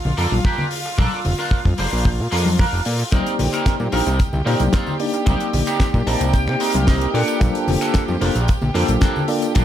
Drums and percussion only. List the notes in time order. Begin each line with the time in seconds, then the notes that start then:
0.05 low conga
0.18 open hi-hat
0.32 high conga
0.45 kick
0.58 low conga
0.71 open hi-hat
0.98 kick, high conga
1.25 open hi-hat, low conga
1.51 kick
1.65 kick, high conga
1.78 open hi-hat
2.05 kick
2.32 open hi-hat
2.46 high conga
2.58 kick, open hi-hat
2.85 open hi-hat
3.12 kick, closed hi-hat, tambourine, high conga
3.26 closed hi-hat, tambourine
3.39 open hi-hat, low conga
3.53 finger snap, closed hi-hat, tambourine
3.66 finger snap, kick, snare, closed hi-hat, tambourine
3.80 tambourine, high conga
3.92 open hi-hat
4.06 closed hi-hat, tambourine
4.19 kick, closed hi-hat, tambourine
4.33 tambourine, low conga
4.47 open hi-hat
4.60 closed hi-hat, tambourine, high conga
4.73 kick, snare, closed hi-hat, tambourine
4.86 tambourine, low conga
5.00 open hi-hat
5.13 closed hi-hat, tambourine
5.26 kick, closed hi-hat, tambourine, high conga
5.40 closed hi-hat, tambourine
5.53 open hi-hat, low conga
5.67 finger snap, closed hi-hat, tambourine
5.80 finger snap, kick, snare, closed hi-hat, tambourine
5.94 kick, tambourine, high conga
6.07 open hi-hat
6.21 closed hi-hat, tambourine
6.33 kick, closed hi-hat, tambourine
6.47 finger snap, tambourine
6.60 open hi-hat
6.74 closed hi-hat, tambourine, high conga
6.87 kick, snare, open hi-hat, tambourine
7.01 closed hi-hat, tambourine
7.15 open hi-hat
7.28 closed hi-hat, tambourine
7.41 kick, closed hi-hat, tambourine, high conga
7.55 closed hi-hat, tambourine
7.68 open hi-hat, low conga
7.81 finger snap, closed hi-hat, tambourine
7.94 finger snap, kick, snare, closed hi-hat, tambourine
8.08 tambourine, high conga
8.21 open hi-hat
8.36 closed hi-hat, tambourine
8.48 kick, closed hi-hat, tambourine
8.62 tambourine, low conga
8.75 open hi-hat
8.88 closed hi-hat, tambourine, high conga
9.01 kick, snare, closed hi-hat, tambourine
9.16 tambourine, low conga
9.28 open hi-hat
9.42 closed hi-hat, tambourine
9.55 kick, closed hi-hat, tambourine, high conga